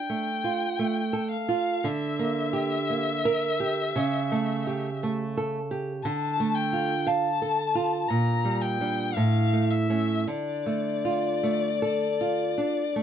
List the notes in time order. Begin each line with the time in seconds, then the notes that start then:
Already playing: D4 G5
0.10 A3
0.44 F4
0.79 A3
1.13 A4
1.31 F5
1.49 F4
1.84 D3 E5
2.19 A#3
2.53 G4
2.90 A#3
3.25 A#4
3.60 G4
3.96 C#3
4.32 A3
4.67 G4
5.03 A3
5.37 A4
5.71 G4
6.03 D3 A5
6.40 A3
6.55 G5
6.73 F4
7.07 F5 A5
7.42 A4
7.75 F4
8.08 A#2 A#5
8.45 G3
8.62 G5
8.81 G3 D4
9.14 A2 F5
9.53 A3
9.70 E5
9.90 A3 C#4
10.27 D3 D5
10.66 A3
11.05 F4
11.43 A3
11.82 A4
12.21 F4
12.58 D4
12.96 A3